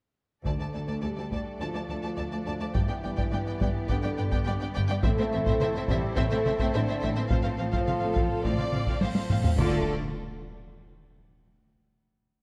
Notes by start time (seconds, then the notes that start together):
0.45 D2 D3 A3 D4 A4 D5 A5, taiko
0.60 D2 A3 D5 A5
0.73 D2 A3 D5 A5
0.88 D2 A3 D5 A5
1.02 D2 G3 A3 G4 D5 A5
1.17 D2 A3 D5 A5
1.31 D2 A3 D5 A5, taiko
1.59 D2 F3 A3 F4 D5 A5
1.74 D2 A3 D5 A5
1.88 D2 A3 D5 A5
2.03 D2 A3 D5 A5
2.16 D2 A3 D5 A5
2.31 D2 A3 D5 A5
2.46 D2 A3 D5 A5
2.60 D2 A3 D5 A5
2.73 G1 G2 E3 B3 E4 G4 D5 G5, taiko
2.88 G2 B3 D5 G5
3.03 G1 G2 B3 D5 G5
3.16 G2 B3 D5 G5, taiko
3.32 G1 G2 B3 D5 G5
3.46 G2 B3 D5 G5
3.60 G1 G2 B3 D5 G5, taiko
3.89 G1 G2 D3 B3 D4 D5 G5, taiko
4.03 G2 B3 D5 G5
4.18 G1 G2 B3 D5 G5
4.32 G2 B3 D5 G5, taiko
4.46 G1 G2 B3 D5 G5
4.61 G2 B3 D5 G5
4.75 G1 G2 B3 D5 G5
4.88 G2 B3 D5 G5
5.03 A1 A2 A3 C4 E4 A4 C5 E5, taiko
5.18 A2 C4 C5 E5
5.32 A1 A2 C4 C5 E5
5.45 A2 C4 C5 E5, taiko
5.60 A1 A2 C4 C5 E5, taiko mid
5.74 A2 C4 C5 E5
5.88 A1 A2 G3 C4 G4 C5 E5, taiko
6.16 A1 A2 A3 C4 A4 C5 E5, taiko
6.31 A2 C4 C5 E5, taiko mid
6.45 A1 A2 C4 C5 E5, taiko mid
6.59 A2 C4 C5 E5, taiko
6.74 A1 A2 D3 C4 D4 C5 E5
6.87 A2 C4 C5 E5
7.02 A1 A2 C4 C5 E5
7.16 A2 E3 C4 E4 C5 E5
7.29 A1 A2 F3 C4 F4 C5 F5, taiko, cymbal swell
7.43 A2 C4 C5 F5
7.58 A1 A2 C4 C5 F5
7.72 A2 C4 C5 F5, taiko
7.86 A1 A2 C4 A4 F5, taiko mid
8.01 A2 C4 F5
8.14 A1 A2 C4 F5, taiko
8.43 A1 A2 C4 D5 F5, taiko
8.58 A2 C4 F5, taiko mid
8.72 A1 A2 C4 F5, taiko mid
8.87 A2 C4 F5, taiko
9.01 A1 A2 C4 C5 F5, taiko high
9.15 A2 C4 F5, taiko high
9.30 A1 A2 C4 F5, taiko low-mid
9.44 A2 C4 F5, taiko low
9.58 D2 D3 A3 F4 A4 D5, taiko, impact